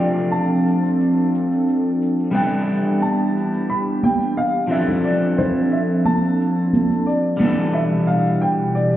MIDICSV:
0, 0, Header, 1, 5, 480
1, 0, Start_track
1, 0, Tempo, 674157
1, 1673, Time_signature, 4, 2, 24, 8
1, 6385, End_track
2, 0, Start_track
2, 0, Title_t, "Grand piano"
2, 0, Program_c, 0, 0
2, 225, Note_on_c, 0, 81, 88
2, 921, Note_off_c, 0, 81, 0
2, 1670, Note_on_c, 0, 79, 87
2, 2123, Note_off_c, 0, 79, 0
2, 2152, Note_on_c, 0, 81, 91
2, 2632, Note_on_c, 0, 83, 90
2, 2647, Note_off_c, 0, 81, 0
2, 2686, Note_off_c, 0, 83, 0
2, 2874, Note_on_c, 0, 79, 88
2, 3097, Note_off_c, 0, 79, 0
2, 3114, Note_on_c, 0, 77, 85
2, 3350, Note_on_c, 0, 76, 85
2, 3361, Note_off_c, 0, 77, 0
2, 3575, Note_off_c, 0, 76, 0
2, 3594, Note_on_c, 0, 74, 79
2, 3832, Note_on_c, 0, 72, 80
2, 3841, Note_off_c, 0, 74, 0
2, 3886, Note_off_c, 0, 72, 0
2, 4072, Note_on_c, 0, 76, 79
2, 4126, Note_off_c, 0, 76, 0
2, 4311, Note_on_c, 0, 81, 98
2, 5031, Note_on_c, 0, 74, 75
2, 5054, Note_off_c, 0, 81, 0
2, 5508, Note_on_c, 0, 76, 83
2, 5527, Note_off_c, 0, 74, 0
2, 5562, Note_off_c, 0, 76, 0
2, 5747, Note_on_c, 0, 77, 80
2, 5992, Note_on_c, 0, 79, 87
2, 5997, Note_off_c, 0, 77, 0
2, 6046, Note_off_c, 0, 79, 0
2, 6229, Note_on_c, 0, 74, 78
2, 6385, Note_off_c, 0, 74, 0
2, 6385, End_track
3, 0, Start_track
3, 0, Title_t, "Clean electric guitar"
3, 0, Program_c, 1, 27
3, 0, Note_on_c, 1, 53, 66
3, 0, Note_on_c, 1, 57, 61
3, 0, Note_on_c, 1, 60, 60
3, 0, Note_on_c, 1, 62, 62
3, 0, Note_on_c, 1, 67, 75
3, 1631, Note_off_c, 1, 53, 0
3, 1638, Note_off_c, 1, 57, 0
3, 1645, Note_off_c, 1, 60, 0
3, 1646, Note_on_c, 1, 55, 68
3, 1652, Note_off_c, 1, 62, 0
3, 1659, Note_off_c, 1, 67, 0
3, 1659, Note_on_c, 1, 59, 59
3, 1674, Note_on_c, 1, 62, 62
3, 1688, Note_on_c, 1, 64, 62
3, 1702, Note_on_c, 1, 69, 75
3, 3311, Note_off_c, 1, 55, 0
3, 3318, Note_off_c, 1, 59, 0
3, 3325, Note_off_c, 1, 62, 0
3, 3327, Note_on_c, 1, 53, 63
3, 3333, Note_off_c, 1, 64, 0
3, 3340, Note_off_c, 1, 69, 0
3, 3340, Note_on_c, 1, 60, 60
3, 3355, Note_on_c, 1, 62, 60
3, 3366, Note_on_c, 1, 64, 62
3, 3381, Note_on_c, 1, 69, 77
3, 5232, Note_off_c, 1, 53, 0
3, 5238, Note_off_c, 1, 60, 0
3, 5246, Note_off_c, 1, 62, 0
3, 5247, Note_on_c, 1, 55, 68
3, 5252, Note_off_c, 1, 64, 0
3, 5259, Note_off_c, 1, 69, 0
3, 5262, Note_on_c, 1, 59, 61
3, 5275, Note_on_c, 1, 62, 61
3, 5288, Note_on_c, 1, 52, 61
3, 5303, Note_on_c, 1, 69, 74
3, 6385, Note_off_c, 1, 52, 0
3, 6385, Note_off_c, 1, 55, 0
3, 6385, Note_off_c, 1, 59, 0
3, 6385, Note_off_c, 1, 62, 0
3, 6385, Note_off_c, 1, 69, 0
3, 6385, End_track
4, 0, Start_track
4, 0, Title_t, "Analog synth pad"
4, 0, Program_c, 2, 89
4, 0, Note_on_c, 2, 53, 71
4, 0, Note_on_c, 2, 60, 64
4, 0, Note_on_c, 2, 62, 65
4, 0, Note_on_c, 2, 69, 78
4, 1656, Note_off_c, 2, 60, 0
4, 1656, Note_off_c, 2, 69, 0
4, 1657, Note_off_c, 2, 53, 0
4, 1676, Note_on_c, 2, 59, 65
4, 1677, Note_on_c, 2, 67, 78
4, 1678, Note_on_c, 2, 52, 74
4, 3338, Note_off_c, 2, 59, 0
4, 3339, Note_off_c, 2, 52, 0
4, 3339, Note_off_c, 2, 67, 0
4, 3357, Note_on_c, 2, 53, 70
4, 3358, Note_on_c, 2, 60, 63
4, 3358, Note_on_c, 2, 69, 80
4, 5256, Note_off_c, 2, 53, 0
4, 5256, Note_off_c, 2, 60, 0
4, 5256, Note_off_c, 2, 69, 0
4, 5275, Note_on_c, 2, 67, 73
4, 5276, Note_on_c, 2, 52, 69
4, 5277, Note_on_c, 2, 47, 62
4, 6385, Note_off_c, 2, 47, 0
4, 6385, Note_off_c, 2, 52, 0
4, 6385, Note_off_c, 2, 62, 0
4, 6385, Note_off_c, 2, 67, 0
4, 6385, End_track
5, 0, Start_track
5, 0, Title_t, "Drums"
5, 0, Note_on_c, 9, 69, 82
5, 68, Note_off_c, 9, 69, 0
5, 120, Note_on_c, 9, 69, 55
5, 191, Note_off_c, 9, 69, 0
5, 236, Note_on_c, 9, 69, 39
5, 307, Note_off_c, 9, 69, 0
5, 483, Note_on_c, 9, 69, 65
5, 554, Note_off_c, 9, 69, 0
5, 602, Note_on_c, 9, 69, 51
5, 673, Note_off_c, 9, 69, 0
5, 716, Note_on_c, 9, 69, 47
5, 787, Note_off_c, 9, 69, 0
5, 959, Note_on_c, 9, 69, 77
5, 1030, Note_off_c, 9, 69, 0
5, 1082, Note_on_c, 9, 69, 49
5, 1153, Note_off_c, 9, 69, 0
5, 1199, Note_on_c, 9, 69, 45
5, 1270, Note_off_c, 9, 69, 0
5, 1437, Note_on_c, 9, 69, 72
5, 1508, Note_off_c, 9, 69, 0
5, 1559, Note_on_c, 9, 69, 50
5, 1631, Note_off_c, 9, 69, 0
5, 1673, Note_on_c, 9, 69, 45
5, 1744, Note_off_c, 9, 69, 0
5, 1917, Note_on_c, 9, 69, 79
5, 1988, Note_off_c, 9, 69, 0
5, 2042, Note_on_c, 9, 69, 52
5, 2113, Note_off_c, 9, 69, 0
5, 2153, Note_on_c, 9, 69, 42
5, 2224, Note_off_c, 9, 69, 0
5, 2403, Note_on_c, 9, 69, 72
5, 2474, Note_off_c, 9, 69, 0
5, 2517, Note_on_c, 9, 69, 55
5, 2589, Note_off_c, 9, 69, 0
5, 2634, Note_on_c, 9, 69, 41
5, 2706, Note_off_c, 9, 69, 0
5, 2872, Note_on_c, 9, 63, 72
5, 2885, Note_on_c, 9, 69, 73
5, 2943, Note_off_c, 9, 63, 0
5, 2956, Note_off_c, 9, 69, 0
5, 3002, Note_on_c, 9, 69, 55
5, 3073, Note_off_c, 9, 69, 0
5, 3115, Note_on_c, 9, 69, 41
5, 3186, Note_off_c, 9, 69, 0
5, 3362, Note_on_c, 9, 69, 80
5, 3433, Note_off_c, 9, 69, 0
5, 3475, Note_on_c, 9, 64, 62
5, 3479, Note_on_c, 9, 69, 61
5, 3546, Note_off_c, 9, 64, 0
5, 3551, Note_off_c, 9, 69, 0
5, 3602, Note_on_c, 9, 69, 44
5, 3673, Note_off_c, 9, 69, 0
5, 3835, Note_on_c, 9, 64, 72
5, 3845, Note_on_c, 9, 69, 75
5, 3906, Note_off_c, 9, 64, 0
5, 3916, Note_off_c, 9, 69, 0
5, 3964, Note_on_c, 9, 69, 49
5, 4035, Note_off_c, 9, 69, 0
5, 4080, Note_on_c, 9, 69, 40
5, 4151, Note_off_c, 9, 69, 0
5, 4311, Note_on_c, 9, 63, 64
5, 4319, Note_on_c, 9, 69, 68
5, 4382, Note_off_c, 9, 63, 0
5, 4390, Note_off_c, 9, 69, 0
5, 4442, Note_on_c, 9, 69, 51
5, 4513, Note_off_c, 9, 69, 0
5, 4562, Note_on_c, 9, 69, 46
5, 4633, Note_off_c, 9, 69, 0
5, 4795, Note_on_c, 9, 63, 78
5, 4801, Note_on_c, 9, 69, 71
5, 4866, Note_off_c, 9, 63, 0
5, 4872, Note_off_c, 9, 69, 0
5, 4915, Note_on_c, 9, 63, 44
5, 4924, Note_on_c, 9, 69, 53
5, 4986, Note_off_c, 9, 63, 0
5, 4996, Note_off_c, 9, 69, 0
5, 5042, Note_on_c, 9, 69, 45
5, 5114, Note_off_c, 9, 69, 0
5, 5271, Note_on_c, 9, 63, 71
5, 5278, Note_on_c, 9, 69, 74
5, 5342, Note_off_c, 9, 63, 0
5, 5349, Note_off_c, 9, 69, 0
5, 5405, Note_on_c, 9, 69, 58
5, 5476, Note_off_c, 9, 69, 0
5, 5522, Note_on_c, 9, 69, 41
5, 5593, Note_off_c, 9, 69, 0
5, 5753, Note_on_c, 9, 69, 76
5, 5825, Note_off_c, 9, 69, 0
5, 5880, Note_on_c, 9, 69, 52
5, 5951, Note_off_c, 9, 69, 0
5, 5997, Note_on_c, 9, 69, 40
5, 6069, Note_off_c, 9, 69, 0
5, 6236, Note_on_c, 9, 69, 60
5, 6307, Note_off_c, 9, 69, 0
5, 6357, Note_on_c, 9, 69, 45
5, 6385, Note_off_c, 9, 69, 0
5, 6385, End_track
0, 0, End_of_file